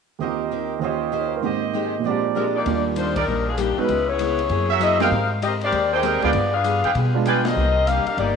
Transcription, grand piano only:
0.19 0.78 D#2 soft
0.19 0.79 D#3 soft
0.19 0.83 C4 soft
0.19 0.82 F4 soft
0.24 0.83 G4 soft
0.79 1.42 D#2 soft
0.79 1.41 D#3 soft
0.79 1.44 C#4 soft
0.79 1.26 C5 soft
0.83 1.44 F4 soft
0.83 1.44 G4 soft
1.13 1.27 D#5 soft
1.21 1.33 C#5 soft
1.28 1.38 C5 soft
1.36 1.47 A#4 soft
1.41 2.04 G#2 soft
1.41 2.04 D#3 soft
1.41 2.05 A#3 soft
1.41 2.05 C4 soft
1.46 2.06 G4 soft
1.99 2.64 A#2 soft
1.99 2.65 F3 soft
2.03 2.66 G#3 soft
2.03 2.67 C4 soft
2.08 2.66 D4 soft
2.08 2.69 G4 soft
2.67 3.13 G3 soft
2.67 3.13 A#3 soft
2.67 3.13 D4 soft
2.67 3.13 F4 soft
3.77 3.88 G#3 medium
3.77 3.88 B3 soft
3.77 3.88 D#4 soft
3.77 3.88 F#4 medium
5.01 5.11 G3 soft
5.01 5.11 A#3 soft
5.01 5.11 C4 soft
5.01 5.11 D#4 medium
6.23 6.33 G#3 medium
6.23 6.33 B3 medium
6.23 6.33 D4 medium
6.23 6.33 F4 medium
7.14 7.54 G#3 medium
7.14 7.54 B3 medium
7.14 7.54 D4 medium
7.14 7.54 F4 medium

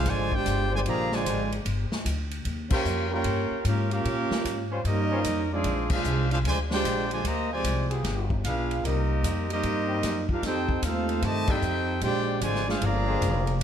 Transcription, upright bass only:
0.06 0.44 G#1 loud
0.46 0.84 G1 loud
0.85 1.24 A#1 medium
1.26 1.64 G#1 loud
1.65 1.89 G1 medium
1.91 muted upright bass stroke soft
2.05 2.44 D2 loud
2.45 2.84 D#2 loud
2.85 3.23 F2 medium
3.24 3.49 G2 medium
3.51 muted upright bass stroke soft
3.65 4.03 G#2 loud
4.05 4.29 A#2 medium
4.30 muted upright bass stroke soft
4.45 4.83 G#2 loud
4.85 5.23 G2 medium
5.24 5.63 F2 loud
5.64 6.03 A#1 medium
6.04 6.43 C2 loud
6.44 6.83 D2 loud
6.84 7.23 A#1 medium
7.24 7.62 D2 medium
7.64 8.02 C2 medium
8.04 8.42 G1 loud
8.44 8.82 B1 loud
8.84 9.22 C2 medium
9.23 9.62 F2 loud
9.63 10.02 G2 loud
10.03 10.41 F#2 loud
10.42 10.81 F2 medium
10.82 11.21 D#2 loud
11.22 11.61 G2 medium
11.62 12.01 F2 loud
12.01 12.40 A#1 loud
12.41 12.80 G#1 loud
12.81 13.20 G1 loud
13.21 13.60 F1 loud

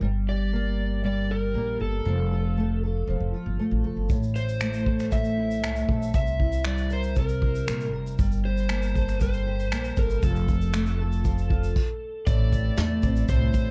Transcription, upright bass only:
0.01 1.50 G1 medium
1.54 1.75 A#1 medium
1.80 2.01 G1 medium
2.05 3.04 F1 medium
3.08 3.18 E1 medium
3.20 3.31 F1 medium
3.46 3.57 G1 medium
3.71 3.82 A1 medium
3.84 3.95 F1 medium
3.97 4.07 G1 medium
4.10 5.63 A1 medium
5.63 5.84 C2 medium
5.89 6.14 A#1 medium
6.14 7.63 C2 loud
7.68 7.93 A#1 medium
7.93 8.14 F1 medium
8.19 9.72 G1 medium
9.72 9.93 A#1 medium
9.97 10.18 G1 medium
10.23 11.72 F1 medium
12.27 12.69 A1 loud
12.77 12.98 E2 medium
13.03 13.24 A1 medium
13.29 13.50 C2 medium
13.54 13.71 E2 medium

